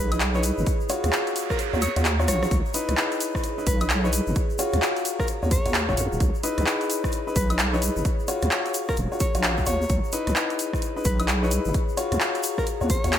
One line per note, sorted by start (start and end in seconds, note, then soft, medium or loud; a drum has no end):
0.00 0.52 B1 loud
0.00 9.89 G#4 medium
0.00 0.11 B4 medium
0.00 13.19 C#5 medium
0.00 0.67 B5 medium
0.12 0.18 D#4 medium
0.12 0.18 E4 medium
0.12 0.18 B4 medium
0.12 closed hi-hat medium
0.12 high woodblock medium
0.12 shaker soft
0.20 clap loud
0.20 closed hi-hat medium
0.20 shaker soft
0.35 0.66 D#4 medium
0.35 0.66 E4 medium
0.35 0.66 B4 medium
0.35 0.43 C#5 medium
0.35 shaker soft
0.43 open hi-hat loud
0.43 shaker medium
0.58 0.64 G#1 medium
0.58 shaker soft
0.66 kick loud
0.66 closed hi-hat medium
0.66 noise sweep medium
0.66 shaker medium
0.81 shaker soft
0.89 1.70 F4 loud
0.89 1.70 F#4 medium
0.89 1.70 C#5 loud
0.89 open hi-hat loud
0.89 shaker medium
1.04 1.10 D#2 loud
1.04 cross-stick medium
1.04 closed hi-hat medium
1.04 shaker soft
1.13 clap loud
1.13 shaker medium
1.27 closed hi-hat soft
1.27 shaker soft
1.36 open hi-hat medium
1.36 shaker medium
1.43 2.51 A#5 medium
1.50 1.58 A#4 medium
1.50 kick medium
1.50 cross-stick medium
1.50 shaker soft
1.59 closed hi-hat medium
1.59 shaker medium
1.73 1.88 D#2 loud
1.73 1.79 F4 medium
1.73 1.79 F#4 medium
1.73 1.79 C#5 medium
1.73 shaker soft
1.82 1.95 C#5 loud
1.82 open hi-hat loud
1.82 high woodblock medium
1.82 shaker medium
1.96 2.30 D#2 medium
1.96 2.02 F4 medium
1.96 2.02 F#4 medium
1.96 2.02 C#5 medium
1.96 closed hi-hat medium
1.96 shaker soft
2.05 clap loud
2.05 closed hi-hat medium
2.05 shaker soft
2.19 2.50 F4 medium
2.19 2.50 F#4 medium
2.19 2.50 C#5 medium
2.19 cross-stick medium
2.19 shaker soft
2.28 2.46 A#1 loud
2.28 2.57 C#5 loud
2.28 cross-stick medium
2.28 open hi-hat loud
2.28 shaker loud
2.43 cross-stick medium
2.43 shaker soft
2.51 2.62 C#2 loud
2.51 kick loud
2.51 closed hi-hat medium
2.51 shaker medium
2.66 shaker soft
2.74 3.55 D#4 loud
2.74 3.55 E4 medium
2.74 3.55 B4 loud
2.74 4.36 B5 medium
2.74 open hi-hat loud
2.74 shaker medium
2.89 2.95 C#2 medium
2.89 cross-stick medium
2.89 closed hi-hat medium
2.89 shaker soft
2.97 clap loud
2.97 shaker medium
3.12 closed hi-hat soft
3.12 shaker soft
3.20 open hi-hat loud
3.20 shaker medium
3.35 kick medium
3.35 cross-stick medium
3.35 shaker soft
3.44 closed hi-hat medium
3.44 shaker soft
3.58 3.64 D#4 medium
3.58 3.64 E4 medium
3.58 3.64 B4 medium
3.58 shaker soft
3.67 4.21 B1 loud
3.67 3.80 B4 medium
3.67 kick loud
3.67 open hi-hat loud
3.67 shaker medium
3.81 3.87 D#4 medium
3.81 3.87 E4 medium
3.81 3.87 B4 medium
3.81 closed hi-hat medium
3.81 high woodblock medium
3.81 shaker soft
3.90 clap loud
3.90 closed hi-hat medium
3.90 shaker soft
4.04 4.35 D#4 medium
4.04 4.35 E4 medium
4.04 4.35 B4 medium
4.04 4.12 C#5 medium
4.04 shaker soft
4.13 open hi-hat loud
4.13 shaker loud
4.27 4.33 G#1 medium
4.27 shaker soft
4.35 kick loud
4.35 closed hi-hat medium
4.35 shaker medium
4.50 shaker soft
4.59 5.39 F4 loud
4.59 5.39 F#4 medium
4.59 5.39 C#5 loud
4.59 open hi-hat loud
4.59 shaker loud
4.73 4.80 D#2 loud
4.73 6.21 A#5 medium
4.73 cross-stick medium
4.73 closed hi-hat medium
4.73 shaker soft
4.82 clap loud
4.82 shaker medium
4.97 closed hi-hat soft
4.97 shaker soft
5.05 open hi-hat medium
5.05 shaker loud
5.19 5.28 A#4 medium
5.19 kick medium
5.19 cross-stick medium
5.19 shaker soft
5.28 closed hi-hat medium
5.28 shaker medium
5.43 5.58 D#2 medium
5.43 5.49 F4 medium
5.43 5.49 F#4 medium
5.43 5.49 C#5 medium
5.43 shaker soft
5.51 5.86 C#5 loud
5.51 kick loud
5.51 open hi-hat loud
5.51 shaker medium
5.66 5.90 D#2 medium
5.66 5.72 F4 medium
5.66 5.72 F#4 medium
5.66 5.72 C#5 medium
5.66 closed hi-hat medium
5.66 shaker soft
5.74 clap loud
5.74 closed hi-hat medium
5.74 shaker medium
5.89 5.95 D#1 medium
5.89 6.19 F4 medium
5.89 6.19 F#4 medium
5.89 5.94 C#5 medium
5.89 6.19 C#5 medium
5.89 kick medium
5.89 shaker soft
5.97 6.08 F#2 loud
5.97 6.07 C#5 medium
5.97 open hi-hat medium
5.97 shaker loud
6.12 6.18 D#1 medium
6.12 shaker soft
6.20 6.31 C#2 loud
6.20 kick loud
6.20 closed hi-hat medium
6.20 shaker soft
6.35 shaker soft
6.43 7.24 D#4 loud
6.43 7.24 E4 medium
6.43 7.24 B4 loud
6.43 open hi-hat loud
6.43 shaker loud
6.58 6.64 C#2 loud
6.58 8.05 B5 medium
6.58 cross-stick medium
6.58 closed hi-hat medium
6.58 shaker soft
6.66 clap loud
6.66 shaker medium
6.81 closed hi-hat soft
6.81 shaker soft
6.90 open hi-hat medium
6.90 shaker loud
7.04 kick medium
7.04 cross-stick medium
7.04 shaker soft
7.12 closed hi-hat medium
7.12 shaker medium
7.27 7.33 D#4 medium
7.27 7.33 E4 medium
7.27 7.33 B4 medium
7.27 shaker soft
7.36 7.90 B1 loud
7.36 7.49 B4 loud
7.36 kick loud
7.36 open hi-hat loud
7.36 shaker loud
7.50 7.56 D#4 medium
7.50 7.56 E4 medium
7.50 7.56 B4 medium
7.50 closed hi-hat medium
7.50 high woodblock medium
7.50 shaker soft
7.59 clap loud
7.59 closed hi-hat medium
7.59 shaker medium
7.73 8.04 D#4 medium
7.73 8.04 E4 medium
7.73 8.04 B4 medium
7.73 7.81 C#5 medium
7.73 shaker soft
7.82 open hi-hat medium
7.82 shaker loud
7.96 8.03 G#1 medium
7.96 shaker soft
8.05 kick loud
8.05 closed hi-hat medium
8.05 shaker medium
8.20 shaker soft
8.28 9.08 F4 loud
8.28 9.08 F#4 medium
8.28 9.08 C#5 loud
8.28 open hi-hat loud
8.28 shaker medium
8.42 8.49 D#2 loud
8.42 cross-stick medium
8.42 closed hi-hat medium
8.42 shaker soft
8.51 clap loud
8.51 shaker soft
8.66 closed hi-hat soft
8.66 shaker soft
8.74 open hi-hat medium
8.74 shaker medium
8.89 8.97 A#4 medium
8.89 9.90 A#5 medium
8.89 kick medium
8.89 cross-stick medium
8.89 shaker soft
8.97 9.08 D#1 medium
8.97 closed hi-hat medium
8.97 shaker medium
9.12 9.18 F4 medium
9.12 9.18 F#4 medium
9.12 9.18 C#5 medium
9.12 shaker soft
9.20 9.34 C#5 loud
9.20 kick loud
9.20 open hi-hat loud
9.20 shaker medium
9.35 9.63 A#1 loud
9.35 9.65 F4 loud
9.35 9.65 F#4 medium
9.35 9.65 C#5 loud
9.35 closed hi-hat medium
9.35 shaker soft
9.43 clap loud
9.43 closed hi-hat medium
9.43 shaker medium
9.58 kick medium
9.58 shaker soft
9.66 9.85 D#2 loud
9.66 9.77 F4 medium
9.66 9.77 F#4 medium
9.66 9.95 C#5 loud
9.66 9.77 C#5 loud
9.66 open hi-hat medium
9.66 shaker loud
9.82 shaker soft
9.89 10.00 C#2 loud
9.89 13.19 G#4 medium
9.89 kick loud
9.89 closed hi-hat medium
9.89 shaker medium
10.04 shaker soft
10.12 10.93 D#4 loud
10.12 10.93 E4 medium
10.12 10.93 B4 loud
10.12 open hi-hat loud
10.12 shaker medium
10.27 10.33 C#2 loud
10.27 cross-stick medium
10.27 closed hi-hat medium
10.27 shaker soft
10.36 clap loud
10.36 shaker medium
10.50 closed hi-hat soft
10.50 shaker soft
10.59 open hi-hat medium
10.59 shaker medium
10.73 11.74 B5 medium
10.73 kick medium
10.73 cross-stick medium
10.73 shaker soft
10.82 closed hi-hat medium
10.82 shaker medium
10.96 11.02 D#4 medium
10.96 11.02 E4 medium
10.96 11.02 B4 medium
10.96 shaker soft
11.05 11.59 B1 loud
11.05 11.19 B4 loud
11.05 kick loud
11.05 open hi-hat loud
11.05 shaker medium
11.19 11.26 D#4 medium
11.19 11.26 E4 medium
11.19 11.26 B4 medium
11.19 closed hi-hat medium
11.19 high woodblock medium
11.19 shaker soft
11.28 clap loud
11.28 closed hi-hat medium
11.28 shaker medium
11.43 11.73 D#4 medium
11.43 11.73 E4 medium
11.43 11.73 B4 medium
11.43 11.51 C#5 medium
11.43 shaker soft
11.51 open hi-hat medium
11.51 shaker medium
11.65 11.72 G#1 medium
11.65 shaker soft
11.74 kick loud
11.74 closed hi-hat medium
11.74 shaker soft
11.89 shaker soft
11.97 12.78 F4 loud
11.97 12.78 F#4 medium
11.97 12.78 C#5 loud
11.97 open hi-hat loud
11.97 shaker medium
12.12 12.18 D#2 loud
12.12 cross-stick medium
12.12 closed hi-hat medium
12.12 shaker soft
12.17 13.19 A#5 medium
12.17 clap loud
12.21 shaker medium
12.35 closed hi-hat soft
12.35 shaker soft
12.43 open hi-hat medium
12.43 shaker medium
12.58 12.66 A#4 medium
12.58 kick medium
12.58 cross-stick medium
12.58 shaker soft
12.67 closed hi-hat medium
12.67 shaker medium
12.81 12.96 D#2 medium
12.81 12.87 F4 medium
12.81 12.87 F#4 medium
12.81 12.87 C#5 medium
12.81 shaker soft
12.90 13.19 C#5 medium
12.90 kick loud
12.90 open hi-hat loud
12.90 shaker medium
13.04 13.19 D#2 medium
13.04 13.10 F4 medium
13.04 13.10 F#4 medium
13.04 13.10 C#5 loud
13.04 closed hi-hat medium
13.04 shaker soft
13.13 clap loud
13.13 closed hi-hat medium
13.13 shaker soft